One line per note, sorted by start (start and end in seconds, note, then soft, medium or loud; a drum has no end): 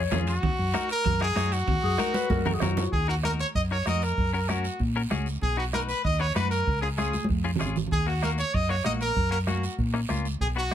0.00 0.18 C#5 medium
0.11 0.37 F2 medium
0.11 0.33 C#4 medium
0.11 0.34 F4 medium
0.11 0.34 G#4 medium
0.11 bombo rim medium
0.11 high conga medium
0.11 low conga medium
0.11 high timbale medium
0.11 low timbale medium
0.11 short guiro medium
0.27 0.87 F#4 medium
0.27 high timbale medium
0.27 short guiro medium
0.43 0.49 D#2 medium
0.43 bombo low medium
0.43 high conga soft
0.43 low conga medium
0.43 high timbale medium
0.43 long guiro medium
0.59 0.71 F#2 medium
0.74 0.90 D#4 medium
0.74 0.91 F#4 medium
0.74 0.91 A#4 medium
0.74 bombo rim medium
0.74 high conga medium
0.74 high timbale medium
0.74 short guiro medium
0.89 1.20 A#4 loud
0.89 high timbale medium
0.89 short guiro medium
1.05 1.30 F#2 medium
1.05 bombo low medium
1.05 high conga soft
1.05 low conga medium
1.05 high timbale medium
1.05 long guiro medium
1.21 1.26 D#4 medium
1.21 1.27 F#4 medium
1.21 1.54 G#4 medium
1.21 1.27 A#4 medium
1.21 bombo rim medium
1.36 1.61 F#2 medium
1.36 1.58 D#4 medium
1.36 1.58 F#4 medium
1.36 1.58 C#5 medium
1.36 bombo rim medium
1.36 high conga medium
1.36 high timbale medium
1.36 short guiro medium
1.52 2.62 F#4 medium
1.52 high timbale medium
1.52 short guiro medium
1.67 1.74 D#2 medium
1.67 bombo low medium
1.67 high conga soft
1.67 low conga medium
1.67 high timbale medium
1.67 long guiro medium
1.83 1.96 F#2 medium
1.83 2.00 G#4 loud
1.98 2.15 D#4 medium
1.98 2.15 F#4 medium
1.98 2.16 A#4 loud
1.98 2.15 A#4 medium
1.98 bombo rim medium
1.98 high conga medium
1.98 high timbale medium
1.98 short guiro medium
2.14 2.32 B4 loud
2.14 high conga medium
2.14 high timbale medium
2.14 short guiro medium
2.30 2.55 F#2 medium
2.30 2.55 A#4 loud
2.30 bombo low medium
2.30 high conga loud
2.30 high timbale medium
2.30 long guiro medium
2.45 2.51 D#4 medium
2.45 2.51 F#4 medium
2.45 2.51 A#4 medium
2.45 low conga medium
2.45 high timbale medium
2.54 2.63 G#4 medium
2.60 2.87 F#2 medium
2.60 2.83 D#4 medium
2.60 2.93 F#4 medium
2.60 2.83 F#4 medium
2.60 2.83 A#4 medium
2.60 bombo rim medium
2.60 low conga medium
2.60 low timbale medium
2.60 short guiro medium
2.77 low conga medium
2.77 low timbale medium
2.77 short guiro medium
2.92 3.42 D#2 medium
2.92 3.07 G#4 medium
2.92 bombo low medium
2.92 high conga soft
2.92 long guiro medium
3.08 3.14 D#4 medium
3.08 3.14 F#4 soft
3.08 3.16 F#4 medium
3.08 3.14 A#4 medium
3.23 3.40 D#4 medium
3.23 3.40 F#4 medium
3.23 3.41 A#4 medium
3.23 3.32 A#4 medium
3.23 bombo rim medium
3.23 high conga medium
3.23 short guiro medium
3.40 3.47 C#5 medium
3.40 short guiro medium
3.55 3.80 F#2 medium
3.55 3.62 D#5 medium
3.55 bombo low medium
3.55 high conga soft
3.55 long guiro medium
3.71 3.76 D#4 medium
3.71 3.76 F#4 soft
3.71 3.77 A#4 medium
3.71 3.86 C#5 medium
3.86 4.11 F2 medium
3.86 4.03 D#4 medium
3.86 4.03 F#4 medium
3.86 4.03 A#4 medium
3.86 4.05 D#5 medium
3.86 bombo rim medium
3.86 high conga medium
3.86 short guiro medium
4.02 4.34 A#4 medium
4.02 short guiro medium
4.17 4.67 F#2 medium
4.17 bombo low medium
4.17 high conga soft
4.17 long guiro medium
4.33 4.39 C#4 medium
4.33 4.39 F#4 soft
4.33 4.39 A#4 medium
4.33 4.50 A#4 medium
4.49 4.65 C#4 medium
4.49 4.80 F#4 medium
4.49 4.65 F#4 medium
4.49 4.66 A#4 medium
4.49 bombo rim medium
4.49 high conga medium
4.49 short guiro medium
4.64 short guiro medium
4.80 5.05 A#2 medium
4.80 bombo low medium
4.80 high conga soft
4.80 long guiro medium
4.96 5.01 C#4 medium
4.96 5.01 F#4 medium
4.96 5.01 A#4 medium
5.10 5.36 C#2 medium
5.10 5.27 C#4 medium
5.10 5.27 F#4 medium
5.10 5.27 G#4 medium
5.10 bombo rim medium
5.10 high conga medium
5.10 short guiro medium
5.26 short guiro medium
5.41 5.92 B1 medium
5.41 5.57 G#4 medium
5.41 bombo low medium
5.41 high conga soft
5.41 long guiro medium
5.57 5.63 D#4 medium
5.57 5.63 F#4 medium
5.57 5.65 F#4 medium
5.57 5.63 B4 medium
5.73 5.90 D#4 medium
5.73 5.90 F#4 medium
5.73 5.81 A#4 medium
5.73 5.90 B4 medium
5.73 bombo rim medium
5.73 high conga medium
5.73 short guiro medium
5.88 6.03 B4 medium
5.88 short guiro medium
6.04 6.29 D#2 medium
6.04 6.21 D#5 medium
6.04 bombo low medium
6.04 high conga soft
6.04 long guiro medium
6.20 6.25 D#4 medium
6.20 6.26 F#4 medium
6.20 6.26 B4 medium
6.20 6.34 C#5 medium
6.35 6.61 F#2 medium
6.35 6.52 D#4 medium
6.35 6.52 F#4 medium
6.35 6.50 B4 medium
6.35 6.52 B4 medium
6.35 bombo rim medium
6.35 high conga medium
6.35 short guiro medium
6.50 6.80 A#4 medium
6.50 short guiro medium
6.67 7.17 C#2 medium
6.67 bombo low medium
6.67 high conga soft
6.67 long guiro medium
6.81 6.88 C#4 medium
6.81 6.88 F4 soft
6.81 6.88 G#4 medium
6.97 7.14 C#4 medium
6.97 7.15 F4 medium
6.97 7.26 G#4 medium
6.97 7.15 G#4 medium
6.97 bombo rim medium
6.97 high conga medium
6.97 short guiro medium
7.13 high conga medium
7.13 short guiro medium
7.24 high conga loud
7.29 7.54 F2 medium
7.29 bombo low medium
7.29 long guiro medium
7.44 7.50 C#4 medium
7.44 7.50 F4 medium
7.44 7.50 G#4 medium
7.55 7.76 C#4 medium
7.55 low conga medium
7.60 7.85 G#1 medium
7.60 7.76 F4 medium
7.60 7.77 G#4 medium
7.60 bombo rim medium
7.60 short guiro medium
7.66 low conga medium
7.76 low conga medium
7.76 short guiro medium
7.87 low conga medium
7.91 8.42 D#2 medium
7.91 8.06 G#4 medium
7.91 bombo low medium
7.91 long guiro medium
8.06 8.12 A#3 medium
8.06 8.13 D#4 soft
8.06 8.13 F#4 medium
8.06 8.22 F#4 medium
8.22 8.39 A#3 medium
8.22 8.39 D#4 medium
8.22 8.39 F#4 medium
8.22 8.30 A#4 medium
8.22 bombo rim medium
8.22 high conga medium
8.22 short guiro medium
8.38 8.56 C#5 medium
8.38 short guiro medium
8.53 8.79 F#2 medium
8.53 8.71 D#5 medium
8.53 bombo low medium
8.53 high conga soft
8.53 long guiro medium
8.69 8.75 A#3 medium
8.69 8.75 D#4 medium
8.69 8.75 F#4 medium
8.69 8.85 C#5 medium
8.84 9.10 A#1 medium
8.84 9.01 A#3 medium
8.84 9.01 D#4 soft
8.84 9.02 F#4 medium
8.84 8.92 D#5 medium
8.84 bombo rim medium
8.84 high conga medium
8.84 short guiro medium
9.01 9.30 A#4 medium
9.01 short guiro medium
9.16 9.66 F#2 loud
9.16 bombo low medium
9.16 high conga soft
9.16 long guiro medium
9.31 9.37 A#3 medium
9.31 9.37 C#4 medium
9.31 9.37 F#4 medium
9.31 9.39 A#4 medium
9.47 9.64 A#3 medium
9.47 9.64 C#4 medium
9.47 9.76 F#4 medium
9.47 9.64 F#4 medium
9.47 bombo rim medium
9.47 high conga medium
9.47 short guiro medium
9.63 short guiro medium
9.78 10.03 A#2 medium
9.78 bombo low medium
9.78 high conga soft
9.78 long guiro medium
9.94 9.99 A#3 medium
9.94 10.00 C#4 medium
9.94 10.00 D#4 medium
9.94 bombo rim medium
10.09 10.34 C#2 medium
10.09 10.26 A#3 medium
10.09 10.26 C#4 medium
10.09 10.26 F4 medium
10.09 bombo rim medium
10.09 high conga medium
10.09 short guiro medium
10.25 short guiro medium
10.40 10.74 B1 medium
10.40 10.48 G#4 medium
10.40 bombo low medium
10.40 high conga soft
10.40 long guiro medium
10.56 10.62 B3 medium
10.56 10.62 D#4 soft
10.56 10.62 F#4 medium
10.56 10.74 F#4 medium